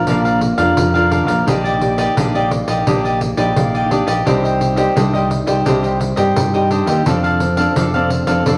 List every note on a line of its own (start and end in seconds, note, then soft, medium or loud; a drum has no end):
0.07 0.52 A#1 medium
0.07 0.74 A#3 soft
0.07 0.24 D4 soft
0.07 0.55 D4 soft
0.07 0.55 F4 soft
0.07 0.24 A#4 soft
0.07 0.55 A#4 medium
0.07 0.24 D5 soft
0.07 0.24 F5 soft
0.07 pandeiro medium
0.25 0.40 A#4 soft
0.25 0.40 D5 medium
0.25 0.41 F5 medium
0.25 pandeiro soft
0.41 muted cavaquinho stroke soft
0.41 pandeiro medium
0.58 0.74 F2 medium
0.58 0.89 D4 medium
0.58 0.89 F4 medium
0.58 0.89 A#4 medium
0.58 0.93 A#4 soft
0.58 0.93 D5 medium
0.58 0.92 F5 medium
0.58 pandeiro medium
0.77 1.28 F2 medium
0.77 1.44 F3 soft
0.77 pandeiro medium
0.94 1.42 D4 medium
0.94 1.42 F4 medium
0.94 1.10 A#4 medium
0.94 1.42 A#4 medium
0.94 1.10 D5 medium
0.94 1.11 F5 medium
0.94 pandeiro soft
1.10 1.27 D4 soft
1.10 1.28 A#4 soft
1.10 1.27 D5 soft
1.10 1.26 F5 soft
1.10 pandeiro medium
1.27 1.44 A#1 medium
1.27 1.45 A#4 soft
1.27 1.45 D5 soft
1.27 1.44 F5 medium
1.27 pandeiro medium
1.46 2.06 A#1 medium
1.46 2.14 A#3 medium
1.46 1.63 D4 soft
1.46 1.77 D#4 medium
1.46 1.63 G4 soft
1.46 1.77 G4 soft
1.46 1.63 D5 medium
1.46 1.77 D5 medium
1.46 1.64 D#5 soft
1.46 pandeiro medium
1.64 1.98 G4 soft
1.64 1.97 D5 medium
1.64 1.97 D#5 soft
1.64 pandeiro soft
1.81 2.29 D#4 medium
1.81 2.29 G4 medium
1.81 2.29 D5 medium
1.81 pandeiro soft
1.98 2.16 G4 medium
1.98 2.15 D5 medium
1.98 2.15 D#5 medium
1.98 pandeiro medium
2.17 2.61 A#1 medium
2.17 2.84 A#3 soft
2.17 2.33 D4 soft
2.17 2.33 G4 soft
2.17 2.33 D5 soft
2.17 2.34 D#5 soft
2.17 pandeiro medium
2.35 2.82 D#4 medium
2.35 2.82 G4 medium
2.35 2.50 G4 soft
2.35 2.51 D5 medium
2.35 2.82 D5 medium
2.35 2.51 D#5 medium
2.35 pandeiro soft
2.51 muted cavaquinho stroke soft
2.51 pandeiro medium
2.67 2.83 A#1 medium
2.67 2.86 G4 soft
2.67 2.85 D5 medium
2.67 2.85 D#5 medium
2.67 pandeiro medium
2.87 3.31 A#1 medium
2.87 3.53 A#3 soft
2.87 3.03 D4 soft
2.87 3.34 D#4 soft
2.87 3.03 G4 medium
2.87 3.34 G4 soft
2.87 3.34 D5 medium
2.87 3.03 D5 soft
2.87 3.04 D#5 medium
2.87 pandeiro medium
3.04 3.20 G4 medium
3.04 3.21 D5 medium
3.04 3.20 D#5 medium
3.04 pandeiro soft
3.21 muted cavaquinho stroke soft
3.21 pandeiro medium
3.37 3.53 A#1 medium
3.37 3.85 D#4 medium
3.37 3.86 G4 medium
3.37 3.73 G4 soft
3.37 3.72 D5 medium
3.37 3.86 D5 medium
3.37 3.72 D#5 medium
3.37 pandeiro medium
3.56 4.01 A#1 medium
3.56 4.23 A#3 medium
3.56 pandeiro medium
3.74 3.90 G4 soft
3.74 3.90 D5 medium
3.74 3.91 D#5 medium
3.74 pandeiro soft
3.90 4.07 D4 soft
3.90 4.12 D#4 soft
3.90 4.12 G4 soft
3.90 4.07 G4 soft
3.90 4.12 D5 medium
3.90 4.05 D5 soft
3.90 4.06 D#5 medium
3.90 pandeiro medium
4.07 4.23 A#1 medium
4.07 4.25 G4 soft
4.07 4.24 D5 medium
4.07 4.24 D#5 medium
4.07 pandeiro medium
4.25 4.86 C2 medium
4.25 4.93 C4 medium
4.25 4.42 D4 soft
4.25 4.73 D#4 soft
4.25 4.43 G4 soft
4.25 4.74 G4 medium
4.25 4.43 C5 soft
4.25 4.74 D5 medium
4.25 4.42 D#5 soft
4.25 pandeiro medium
4.44 4.77 G4 soft
4.44 4.76 C5 soft
4.44 4.75 D#5 medium
4.44 pandeiro soft
4.61 pandeiro medium
4.76 5.08 D#4 medium
4.76 5.08 G4 medium
4.76 4.95 G4 medium
4.76 4.94 C5 medium
4.76 5.08 D5 medium
4.76 4.94 D#5 medium
4.76 pandeiro medium
4.96 5.41 C2 medium
4.96 5.63 G3 medium
4.96 5.12 D4 soft
4.96 5.13 G4 soft
4.96 5.13 C5 soft
4.96 5.12 D#5 soft
4.96 pandeiro medium
5.14 5.43 D#4 medium
5.14 5.43 G4 medium
5.14 5.29 G4 medium
5.14 5.29 C5 medium
5.14 5.44 D5 medium
5.14 5.29 D#5 medium
5.14 pandeiro soft
5.30 muted cavaquinho stroke soft
5.30 pandeiro medium
5.47 5.63 C2 medium
5.47 5.60 D#4 soft
5.47 5.60 G4 medium
5.47 5.65 G4 soft
5.47 5.64 C5 medium
5.47 5.60 D5 medium
5.47 5.64 D#5 medium
5.47 pandeiro medium
5.65 6.11 C2 medium
5.65 6.33 C4 soft
5.65 5.82 D4 soft
5.65 5.99 D#4 soft
5.65 5.82 G4 soft
5.65 5.99 G4 medium
5.65 5.83 C5 soft
5.65 6.00 D5 medium
5.65 5.82 D#5 medium
5.65 pandeiro medium
5.83 5.99 G4 soft
5.83 5.99 C5 medium
5.83 5.99 D#5 medium
5.83 pandeiro soft
6.00 muted cavaquinho stroke soft
6.00 pandeiro soft
6.16 6.33 G2 medium
6.16 6.47 D#4 medium
6.16 6.48 G4 medium
6.16 6.52 G4 medium
6.16 6.52 C5 medium
6.16 6.48 D5 medium
6.16 6.51 D#5 medium
6.16 pandeiro medium
6.36 6.87 G2 medium
6.36 7.03 G3 medium
6.36 pandeiro medium
6.54 7.01 D#4 medium
6.54 7.01 G4 medium
6.54 6.70 G4 medium
6.54 6.70 C5 medium
6.54 7.01 D5 medium
6.54 6.70 D#5 medium
6.54 pandeiro soft
6.70 6.87 D4 soft
6.70 6.87 G4 soft
6.70 6.87 C5 soft
6.70 6.86 D#5 soft
6.70 pandeiro medium
6.87 7.03 D#2 medium
6.87 7.05 G4 soft
6.87 7.05 C5 medium
6.87 7.04 D#5 medium
6.87 pandeiro medium
7.06 7.66 F2 medium
7.06 7.73 F3 soft
7.06 7.39 C4 medium
7.06 7.22 D4 soft
7.06 7.39 D4 medium
7.06 7.22 A4 soft
7.06 7.39 A4 medium
7.06 7.23 D5 soft
7.06 7.22 F5 soft
7.06 pandeiro medium
7.23 7.58 A4 soft
7.23 7.57 D5 medium
7.23 7.56 F5 medium
7.23 pandeiro soft
7.40 pandeiro medium
7.57 7.87 C4 medium
7.57 7.87 D4 soft
7.57 7.88 A4 medium
7.57 7.75 A4 soft
7.57 7.74 D5 medium
7.57 7.74 F5 medium
7.57 pandeiro medium
7.76 8.21 F2 medium
7.76 8.43 C3 medium
7.76 7.92 D4 soft
7.76 7.93 A4 soft
7.76 7.93 D5 soft
7.76 7.93 F5 soft
7.76 pandeiro medium
7.94 8.23 C4 medium
7.94 8.24 D4 medium
7.94 8.24 A4 medium
7.94 8.09 A4 medium
7.94 8.10 D5 medium
7.94 8.10 F5 medium
7.94 pandeiro soft
8.10 muted cavaquinho stroke soft
8.10 pandeiro medium
8.27 8.43 F2 medium
8.27 8.40 C4 medium
8.27 8.40 D4 medium
8.27 8.40 A4 medium
8.27 8.45 A4 soft
8.27 8.44 D5 medium
8.27 8.44 F5 medium
8.27 pandeiro medium
8.46 8.58 F2 medium
8.46 8.58 F3 soft
8.46 8.58 C4 soft
8.46 8.58 D4 soft
8.46 8.58 A4 medium
8.46 8.58 A4 soft
8.46 8.58 D5 medium
8.46 8.58 F5 medium
8.46 pandeiro medium